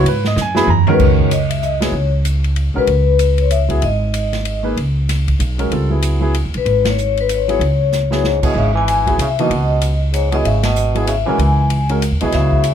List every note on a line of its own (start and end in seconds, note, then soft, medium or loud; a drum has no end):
0.04 0.35 G#2 medium
0.04 ride medium
0.08 0.25 B4 medium
0.25 0.38 D#5 medium
0.25 snare medium
0.36 0.66 F#2 medium
0.36 snare medium
0.36 hi-hat pedal medium
0.41 0.57 G#5 medium
0.55 0.66 F#3 medium
0.55 0.66 B3 medium
0.55 0.67 E4 medium
0.55 0.67 G#4 loud
0.55 0.68 B5 loud
0.55 snare medium
0.67 0.98 E2 medium
0.67 0.92 A#5 medium
0.67 floor tom medium
0.87 1.28 D#3 medium
0.87 1.28 G#3 medium
0.87 1.28 C#4 medium
0.87 1.29 F#4 medium
0.87 1.29 A#4 loud
0.87 floor tom medium
0.93 1.02 B4 medium
0.99 1.89 C#2 medium
0.99 kick medium
0.99 crash medium
1.04 1.34 C#5 medium
1.19 kick medium
1.31 1.49 D#5 medium
1.31 hi-hat pedal medium
1.31 ride medium
1.50 1.62 E5 medium
1.50 ride medium
1.62 1.71 D#5 medium
1.62 hi-hat pedal soft
1.80 1.92 F#3 medium
1.80 1.92 B3 medium
1.80 1.92 E4 medium
1.80 1.92 G#4 medium
1.80 2.11 C#5 medium
1.80 snare medium
1.80 ride medium
1.92 2.71 C#2 medium
2.25 hi-hat pedal medium
2.25 ride medium
2.44 ride soft
2.56 ride medium
2.74 2.87 B1 medium
2.74 2.86 G#3 medium
2.74 2.86 C#4 medium
2.74 2.86 F#4 medium
2.74 2.87 A#4 medium
2.78 3.42 B4 medium
2.87 3.78 C#2 medium
2.87 ride medium
3.19 hi-hat pedal medium
3.19 ride medium
3.38 3.51 C#5 medium
3.38 ride soft
3.51 3.83 E5 medium
3.51 hi-hat pedal medium
3.51 ride medium
3.69 3.80 F#3 medium
3.69 3.80 B3 medium
3.69 3.81 E4 medium
3.69 3.81 G#4 medium
3.69 kick soft
3.69 ride soft
3.82 4.73 G#1 medium
3.82 4.61 D#5 medium
3.82 ride medium
4.14 hi-hat pedal medium
4.14 ride medium
4.33 snare soft
4.33 ride soft
4.45 ride medium
4.63 4.75 A#3 medium
4.63 4.75 D#4 medium
4.63 4.75 G#4 medium
4.63 4.75 B4 medium
4.77 5.36 C#2 medium
4.77 ride medium
5.09 snare soft
5.09 hi-hat pedal soft
5.09 ride medium
5.28 kick soft
5.28 ride soft
5.39 5.69 B1 medium
5.39 hi-hat pedal soft
5.39 ride medium
5.58 5.70 G#3 medium
5.58 5.70 C#4 medium
5.58 5.70 F#4 medium
5.58 5.70 A#4 medium
5.58 ride soft
5.71 6.41 C#2 medium
5.71 5.89 G3 medium
5.71 5.89 C4 soft
5.71 5.89 F4 medium
5.71 5.90 A4 medium
5.71 ride medium
5.90 6.18 F#3 medium
5.90 6.18 B3 medium
5.90 6.18 E4 medium
5.90 6.18 G#4 medium
6.02 hi-hat pedal medium
6.02 ride medium
6.20 6.32 F#3 medium
6.20 6.33 B3 medium
6.20 6.33 E4 medium
6.20 6.33 G#4 medium
6.35 ride medium
6.45 6.54 D#2 medium
6.54 6.65 B1 medium
6.54 6.85 B4 medium
6.54 ride soft
6.65 7.56 G#1 medium
6.65 ride soft
6.85 snare medium
6.85 ride medium
6.89 7.17 C#5 medium
6.98 hi-hat pedal medium
7.17 7.31 B4 medium
7.17 ride soft
7.29 hi-hat pedal medium
7.29 ride medium
7.34 7.50 C#5 medium
7.48 7.59 F#3 medium
7.48 7.60 B3 medium
7.48 7.60 E4 medium
7.48 7.60 G#4 medium
7.48 ride soft
7.53 8.22 C#5 medium
7.59 8.50 C#2 medium
7.59 ride medium
7.92 snare soft
7.92 hi-hat pedal medium
8.11 8.22 F#3 medium
8.11 8.22 B3 medium
8.11 8.22 E4 medium
8.11 8.23 G#4 medium
8.11 snare medium
8.24 8.42 G#2 medium
8.24 8.43 C#5 medium
8.24 snare medium
8.42 8.54 B2 medium
8.42 8.54 F#3 medium
8.42 8.54 B3 medium
8.42 8.54 E4 medium
8.42 8.54 G#4 medium
8.42 8.55 D#5 medium
8.42 kick medium
8.42 crash medium
8.55 9.14 G#1 medium
8.55 8.74 C#3 medium
8.55 8.74 E5 medium
8.75 9.15 E3 medium
8.75 9.21 G#5 medium
8.88 hi-hat pedal medium
8.88 ride medium
9.06 9.17 F#3 medium
9.06 9.17 B3 medium
9.06 9.18 E4 medium
9.06 9.18 G#4 medium
9.06 kick soft
9.06 ride soft
9.18 9.47 C2 medium
9.18 9.29 C#3 medium
9.18 9.28 E5 medium
9.18 hi-hat pedal medium
9.18 ride medium
9.39 9.97 B2 medium
9.39 9.49 E3 medium
9.39 9.50 A#3 medium
9.39 9.50 D#4 medium
9.39 9.50 F#4 medium
9.39 9.98 D#5 medium
9.39 ride soft
9.50 10.40 C#2 medium
9.50 ride medium
9.82 hi-hat pedal medium
9.82 ride medium
10.12 10.30 G#2 medium
10.12 10.33 C#5 medium
10.12 hi-hat pedal medium
10.12 ride medium
10.31 10.37 B2 medium
10.31 10.43 F#3 medium
10.31 10.43 B3 medium
10.31 10.44 E4 medium
10.31 10.44 G#4 medium
10.31 10.40 D#5 medium
10.31 ride soft
10.44 11.23 G#1 medium
10.44 10.62 C#3 medium
10.44 10.63 E5 medium
10.44 ride medium
10.63 11.05 B2 medium
10.63 11.05 D#5 medium
10.63 snare medium
10.63 ride medium
10.76 hi-hat pedal medium
10.95 11.06 F#3 medium
10.95 11.06 B3 medium
10.95 11.06 E4 medium
10.95 11.07 G#4 medium
10.95 ride soft
11.07 11.17 C#3 medium
11.07 11.16 E5 medium
11.07 hi-hat pedal medium
11.07 ride medium
11.26 11.38 B1 medium
11.26 11.85 E3 medium
11.26 11.38 G#3 medium
11.26 11.38 C#4 medium
11.26 11.38 F#4 medium
11.26 11.38 A#4 medium
11.26 11.86 G#5 medium
11.38 12.08 C#2 medium
11.38 ride medium
11.70 ride medium
11.89 12.01 G#3 medium
11.89 12.01 C#4 medium
11.89 12.01 F#4 medium
11.89 12.01 A#4 medium
11.89 ride soft
12.02 hi-hat pedal medium
12.02 ride medium
12.11 12.21 D#2 medium
12.21 12.32 B1 medium
12.21 12.27 B2 medium
12.21 12.63 F#3 medium
12.21 12.63 B3 medium
12.21 12.63 E4 medium
12.21 12.63 G#4 medium
12.21 12.26 D#5 medium
12.21 ride soft
12.32 12.74 C#2 medium
12.32 12.74 C#3 medium
12.32 12.74 E5 medium
12.32 snare soft
12.32 ride medium
12.52 kick medium
12.64 hi-hat pedal medium
12.64 ride medium